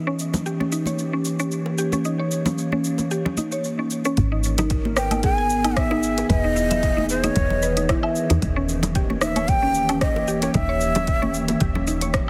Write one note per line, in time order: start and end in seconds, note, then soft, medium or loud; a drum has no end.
0.00 4.18 E3 medium
0.00 1.07 D#5 medium
0.07 0.19 C#4 loud
0.16 4.18 A#3 medium
0.16 4.17 G4 medium
0.16 cabasa medium
0.34 high conga medium
0.34 low conga medium
0.34 cabasa soft
0.46 0.60 G4 medium
0.46 cabasa soft
0.60 0.71 C#4 medium
0.60 high conga medium
0.72 0.86 D#4 medium
0.72 cabasa medium
0.86 1.12 C#5 medium
0.86 5.03 C#5 medium
0.86 high conga medium
0.86 cabasa soft
0.99 cabasa soft
1.13 1.38 C#4 medium
1.25 cabasa medium
1.39 1.51 C#4 medium
1.39 cabasa soft
1.52 cabasa soft
1.66 high bongo medium
1.78 1.92 G4 medium
1.78 cabasa medium
1.92 2.04 C#4 medium
1.92 high bongo medium
1.92 high conga medium
1.92 cabasa soft
2.05 2.19 D#4 medium
2.05 cabasa soft
2.19 2.45 C#5 medium
2.31 cabasa medium
2.46 2.71 C#4 medium
2.46 high conga medium
2.46 low conga medium
2.46 cabasa soft
2.58 cabasa soft
2.72 2.84 C#4 loud
2.72 high conga medium
2.84 cabasa medium
2.98 high bongo medium
2.98 high conga medium
2.98 cabasa soft
3.11 3.25 G4 medium
3.11 cabasa soft
3.25 3.36 C#4 medium
3.25 low conga medium
3.37 3.51 D#4 medium
3.37 high conga medium
3.37 cabasa medium
3.52 3.77 C#5 medium
3.52 cabasa soft
3.64 cabasa soft
3.79 4.04 C#4 medium
3.91 cabasa medium
4.05 4.17 C#4 loud
4.05 high bongo medium
4.05 cabasa soft
4.17 6.23 G#1 loud
4.17 6.30 D#3 medium
4.17 kick loud
4.17 closed hi-hat soft
4.17 cabasa soft
4.32 4.57 D#4 medium
4.38 8.42 B3 medium
4.38 6.30 A#4 medium
4.44 cabasa medium
4.49 8.42 G#4 loud
4.58 4.70 D#4 medium
4.58 closed hi-hat medium
4.58 low conga loud
4.58 cabasa soft
4.70 kick loud
4.70 closed hi-hat soft
4.70 cabasa soft
4.85 high conga medium
4.97 5.11 B4 medium
4.97 5.22 G5 loud
4.97 cross-stick medium
4.97 cabasa medium
5.11 5.22 D#4 medium
5.11 closed hi-hat medium
5.11 high conga medium
5.11 cabasa soft
5.11 low woodblock medium
5.23 5.37 G#4 medium
5.23 5.35 G5 loud
5.23 kick medium
5.23 closed hi-hat soft
5.23 cabasa soft
5.35 5.79 G#5 loud
5.35 5.63 G#5 medium
5.50 cabasa medium
5.64 5.90 D#4 medium
5.64 closed hi-hat medium
5.64 high conga soft
5.64 cabasa soft
5.64 low woodblock medium
5.77 6.30 E5 loud
5.77 kick loud
5.77 cross-stick medium
5.77 closed hi-hat soft
5.77 cabasa soft
5.91 6.03 D#4 loud
5.91 high bongo medium
6.03 cabasa medium
6.18 closed hi-hat medium
6.18 high bongo medium
6.18 cabasa soft
6.29 7.30 E1 loud
6.29 12.30 E3 medium
6.29 6.43 B4 medium
6.29 7.06 D#5 loud
6.29 kick loud
6.29 closed hi-hat soft
6.29 cabasa soft
6.44 6.55 D#4 medium
6.56 6.70 E4 medium
6.56 cabasa medium
6.70 12.30 D#3 medium
6.70 6.96 E5 medium
6.70 closed hi-hat medium
6.70 low conga medium
6.70 cabasa soft
6.83 kick loud
6.83 closed hi-hat soft
6.83 cabasa soft
6.89 8.42 B4 medium
6.97 7.22 D#4 medium
6.97 high conga medium
7.09 7.26 C5 medium
7.09 cabasa medium
7.24 7.35 D#4 loud
7.24 8.12 C#5 medium
7.24 closed hi-hat medium
7.24 high bongo medium
7.24 high conga medium
7.24 cabasa soft
7.36 7.96 E1 medium
7.36 kick medium
7.36 closed hi-hat soft
7.36 cabasa soft
7.50 low conga medium
7.63 7.76 B4 medium
7.63 cabasa medium
7.77 7.88 D#4 medium
7.77 closed hi-hat medium
7.77 high conga soft
7.77 cabasa soft
7.89 8.03 E4 medium
7.89 kick loud
7.89 cross-stick medium
7.89 closed hi-hat soft
7.89 cabasa soft
8.03 8.29 E5 medium
8.03 low woodblock medium
8.16 cabasa medium
8.30 8.38 E2 medium
8.30 8.42 D#4 medium
8.30 closed hi-hat medium
8.30 high bongo medium
8.30 cabasa soft
8.42 10.48 D#1 loud
8.42 kick loud
8.42 closed hi-hat soft
8.42 cabasa soft
8.48 12.30 A#3 medium
8.56 8.68 C#4 loud
8.69 cabasa medium
8.81 12.30 G4 medium
8.81 closed hi-hat medium
8.81 low conga loud
8.81 cabasa soft
8.95 9.09 G4 medium
8.95 kick loud
8.95 closed hi-hat soft
8.95 cabasa soft
9.10 9.21 C#4 medium
9.10 high conga medium
9.21 9.35 D#4 medium
9.21 9.50 E5 loud
9.21 cross-stick medium
9.21 cabasa medium
9.31 12.30 C#5 medium
9.36 9.61 C#5 medium
9.36 closed hi-hat soft
9.36 high conga medium
9.36 cabasa soft
9.36 low woodblock medium
9.48 10.01 G5 loud
9.48 kick loud
9.48 closed hi-hat soft
9.48 cabasa soft
9.62 9.88 C#4 medium
9.75 cabasa medium
9.89 10.01 C#4 loud
9.89 closed hi-hat medium
9.89 high conga soft
9.89 cabasa medium
9.89 low woodblock medium
10.01 10.40 D#5 loud
10.01 kick loud
10.01 cross-stick medium
10.01 closed hi-hat soft
10.01 cabasa soft
10.16 high bongo medium
10.28 10.42 G4 medium
10.28 cabasa medium
10.42 10.53 C#4 medium
10.42 10.53 C#5 medium
10.42 closed hi-hat medium
10.42 high bongo medium
10.42 cabasa soft
10.54 11.54 D#1 medium
10.54 10.68 D#4 medium
10.54 11.57 E5 loud
10.54 kick loud
10.54 closed hi-hat soft
10.54 cabasa soft
10.69 10.94 C#5 medium
10.81 high bongo soft
10.81 cabasa medium
10.95 11.21 C#4 medium
10.95 closed hi-hat medium
10.95 low conga medium
10.95 cabasa soft
11.07 kick loud
11.07 closed hi-hat soft
11.07 cabasa soft
11.22 11.34 C#4 loud
11.22 high conga medium
11.34 cabasa medium
11.48 closed hi-hat medium
11.48 high bongo medium
11.48 high conga medium
11.48 cabasa soft
11.60 12.21 D#1 medium
11.60 11.74 G4 medium
11.60 kick loud
11.60 closed hi-hat soft
11.60 cabasa soft
11.75 11.86 C#4 medium
11.75 low conga medium
11.87 12.01 D#4 medium
11.87 cabasa medium
12.01 12.27 C#5 medium
12.01 closed hi-hat medium
12.01 high conga soft
12.01 cabasa soft
12.14 kick loud
12.14 cross-stick medium
12.14 closed hi-hat soft
12.14 cabasa soft